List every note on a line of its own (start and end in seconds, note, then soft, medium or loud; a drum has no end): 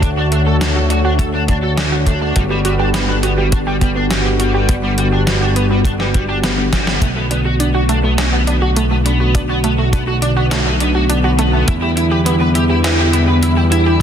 0.00 2.33 D2 medium
0.00 2.32 D3 medium
0.00 2.32 A3 medium
0.00 0.11 D4 loud
0.00 0.07 D4 loud
0.00 2.32 F#4 medium
0.00 2.32 C#5 medium
0.00 kick loud
0.00 closed hi-hat medium
0.17 0.25 D4 loud
0.17 0.30 F#4 medium
0.32 0.45 A3 loud
0.32 0.39 D4 medium
0.32 closed hi-hat medium
0.46 0.59 A3 medium
0.46 0.54 A4 medium
0.61 0.69 D4 medium
0.61 0.68 D4 medium
0.61 snare loud
0.61 closed hi-hat medium
0.76 0.89 F#4 medium
0.76 0.83 A4 medium
0.90 0.98 D4 loud
0.90 0.97 F#4 loud
0.90 closed hi-hat medium
1.05 1.12 D4 medium
1.05 1.18 F#4 loud
1.19 1.33 A3 loud
1.19 1.24 A4 loud
1.19 kick loud
1.19 closed hi-hat medium
1.34 1.47 A3 medium
1.34 1.41 D4 medium
1.48 1.56 D4 medium
1.48 kick medium
1.48 closed hi-hat medium
1.63 1.77 F#4 medium
1.63 1.70 A4 medium
1.78 1.85 D4 loud
1.78 1.85 D4 medium
1.78 snare loud
1.78 closed hi-hat medium
1.92 1.96 D4 medium
1.92 2.05 F#4 loud
2.06 2.20 A3 loud
2.06 2.18 D4 medium
2.06 kick medium
2.06 closed hi-hat medium
2.21 2.34 A3 medium
2.21 2.32 D4 medium
2.36 6.99 G1 medium
2.36 6.98 D3 medium
2.36 2.40 G3 loud
2.36 6.98 G3 medium
2.36 6.98 B3 medium
2.36 6.98 F#4 medium
2.36 2.44 F#4 medium
2.36 kick loud
2.36 closed hi-hat medium
2.50 2.58 G3 loud
2.50 2.64 G4 medium
2.65 2.72 G3 medium
2.65 2.73 F#4 loud
2.65 closed hi-hat medium
2.79 2.87 D4 medium
2.79 2.92 G4 loud
2.94 3.01 G3 medium
2.94 3.07 B3 loud
2.94 snare loud
2.94 closed hi-hat medium
3.09 3.22 B3 medium
3.09 3.16 D4 medium
3.23 3.30 B3 loud
3.23 3.31 F#4 medium
3.23 closed hi-hat medium
3.38 3.45 G3 medium
3.38 3.52 G4 medium
3.52 3.57 D4 loud
3.52 3.60 F#4 loud
3.52 kick loud
3.52 closed hi-hat medium
3.67 3.74 G3 medium
3.67 3.80 G4 loud
3.81 3.89 G3 medium
3.81 3.95 B3 loud
3.81 kick medium
3.81 closed hi-hat medium
3.96 4.09 B3 medium
3.96 4.03 D4 medium
4.10 4.18 G3 medium
4.10 4.18 F#4 medium
4.10 snare loud
4.10 closed hi-hat medium
4.25 4.29 G3 medium
4.25 4.39 G4 medium
4.40 4.51 G3 medium
4.40 4.47 F#4 loud
4.40 closed hi-hat medium
4.54 4.65 G3 medium
4.54 4.67 G4 medium
4.69 4.73 G3 loud
4.69 4.82 B3 loud
4.69 kick loud
4.69 closed hi-hat medium
4.83 4.91 G3 medium
4.83 4.96 B3 medium
4.98 5.05 G3 medium
4.98 5.06 F#4 medium
4.98 closed hi-hat medium
5.12 5.20 D4 medium
5.12 5.26 G4 medium
5.27 5.34 G3 medium
5.27 5.35 F#4 loud
5.27 snare loud
5.27 closed hi-hat medium
5.41 5.49 D4 medium
5.41 5.55 G4 loud
5.56 5.63 B3 loud
5.56 5.69 B3 loud
5.56 closed hi-hat medium
5.71 5.78 G3 medium
5.71 5.84 B3 medium
5.85 5.90 D4 loud
5.85 5.93 F#4 medium
5.85 kick loud
5.85 closed hi-hat medium
6.00 6.07 G3 medium
6.00 6.14 G4 medium
6.00 snare soft
6.14 6.22 G3 medium
6.14 6.22 F#4 loud
6.14 kick loud
6.14 closed hi-hat medium
6.29 6.36 D4 medium
6.29 6.42 G4 loud
6.43 6.51 G3 medium
6.43 6.57 B3 loud
6.43 snare loud
6.43 closed hi-hat medium
6.58 6.62 G3 medium
6.58 6.71 B3 medium
6.73 6.84 G3 medium
6.73 6.80 F#4 medium
6.73 kick medium
6.73 snare medium
6.73 closed hi-hat medium
6.87 6.98 G3 medium
6.87 7.01 G4 medium
6.87 snare medium
7.01 11.65 B1 medium
7.01 14.02 D3 medium
7.01 11.64 A3 medium
7.01 7.15 A3 loud
7.01 14.02 B3 medium
7.01 7.06 B3 medium
7.01 11.64 F#4 medium
7.01 kick loud
7.01 closed hi-hat medium
7.16 7.29 A3 medium
7.16 7.23 B3 medium
7.31 7.38 B3 medium
7.31 7.39 D4 medium
7.31 closed hi-hat medium
7.45 7.53 F#4 medium
7.45 7.59 F#4 medium
7.60 7.67 B3 medium
7.60 7.68 D4 loud
7.60 closed hi-hat medium
7.74 7.82 F#4 medium
7.74 7.87 F#4 loud
7.89 8.02 A3 loud
7.89 7.96 D4 loud
7.89 closed hi-hat medium
8.03 8.17 A3 medium
8.03 8.11 B3 medium
8.18 8.26 D4 medium
8.18 8.22 F#4 medium
8.18 snare loud
8.18 closed hi-hat medium
8.33 8.40 B3 medium
8.33 8.47 F#4 medium
8.47 8.55 B3 medium
8.47 8.55 D4 loud
8.47 closed hi-hat medium
8.62 8.69 F#4 medium
8.62 8.75 F#4 loud
8.76 8.90 A3 loud
8.76 8.84 B3 medium
8.76 closed hi-hat medium
8.91 9.04 A3 medium
8.91 8.95 B3 medium
9.06 9.17 B3 medium
9.06 9.13 D4 medium
9.06 closed hi-hat medium
9.20 9.31 B3 medium
9.20 9.34 F#4 medium
9.35 9.39 B3 loud
9.35 9.43 D4 loud
9.35 kick loud
9.35 closed hi-hat medium
9.49 9.57 B3 loud
9.49 9.62 F#4 loud
9.64 9.77 A3 loud
9.64 9.71 B3 medium
9.64 closed hi-hat medium
9.78 9.91 A3 medium
9.78 9.86 F#4 medium
9.93 10.00 B3 medium
9.93 10.01 D4 medium
9.93 kick loud
9.93 closed hi-hat medium
10.07 10.15 F#4 medium
10.07 10.21 F#4 medium
10.22 10.30 D4 loud
10.22 10.29 D4 loud
10.22 closed hi-hat medium
10.37 10.44 B3 medium
10.37 10.50 F#4 loud
10.51 10.64 A3 loud
10.51 10.56 F#4 loud
10.51 snare loud
10.51 closed hi-hat medium
10.66 10.79 A3 medium
10.66 10.73 B3 medium
10.80 10.88 B3 medium
10.80 10.88 D4 medium
10.80 closed hi-hat medium
10.95 11.09 F#4 medium
10.95 11.02 F#4 medium
11.09 11.17 B3 medium
11.09 11.17 D4 loud
11.09 closed hi-hat medium
11.24 11.28 B3 medium
11.24 11.37 F#4 loud
11.39 11.52 A3 loud
11.39 11.50 B3 medium
11.39 closed hi-hat medium
11.53 11.66 A3 medium
11.53 11.64 B3 medium
11.68 14.02 E2 medium
11.68 14.02 G3 medium
11.68 13.98 E4 medium
11.68 11.72 E4 loud
11.68 11.76 E4 medium
11.68 kick loud
11.68 closed hi-hat medium
11.82 11.90 E4 loud
11.82 11.96 G4 medium
11.97 12.05 E4 loud
11.97 12.04 E4 medium
11.97 closed hi-hat medium
12.11 12.24 G4 loud
12.11 12.19 B4 medium
12.26 12.39 B3 loud
12.26 12.33 E4 medium
12.26 closed hi-hat loud
12.40 12.54 B3 medium
12.40 12.48 B4 medium
12.55 12.63 E4 medium
12.55 12.62 G4 loud
12.55 closed hi-hat medium
12.70 12.77 E4 medium
12.70 12.84 G4 medium
12.84 12.92 E4 loud
12.84 12.89 B4 loud
12.84 snare loud
12.84 closed hi-hat loud
12.99 13.06 E4 medium
12.99 13.12 G4 loud
13.13 13.27 B3 loud
13.13 13.21 E4 medium
13.13 closed hi-hat medium
13.28 13.41 B3 medium
13.28 13.35 B4 medium
13.42 13.50 E4 medium
13.42 closed hi-hat medium
13.57 13.61 E4 medium
13.57 13.71 G4 medium
13.72 13.83 E4 medium
13.72 13.79 E4 loud
13.72 closed hi-hat medium
13.86 13.97 E4 medium
13.86 13.99 G4 loud